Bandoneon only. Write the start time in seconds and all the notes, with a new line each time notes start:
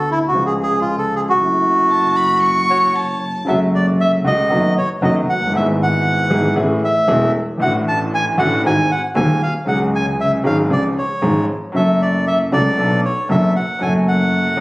0.12 E4
0.28 F#4
0.46 G#4
0.63 G#4
0.81 F4
0.98 A4
1.16 G#4
1.29 F#4
2.70 C#5
3.48 E5
3.75 D5
4.00 E5
4.27 D#5
4.78 C#5
5.04 D#5
5.30 F#5
5.56 E5
5.83 F#5
6.85 E5
7.62 F#5
7.88 A5
8.14 G#5
8.39 F#5
8.66 G#5
8.91 F#5
9.16 G#5
9.43 F5
9.68 F#5
9.95 G#5
10.21 E5
10.46 F5
10.73 D5
10.98 C#5
11.76 E5
12.02 D5
12.27 E5
12.53 D5
13.05 C#5
13.31 E5
13.56 F#5
13.82 G#5
14.08 F#5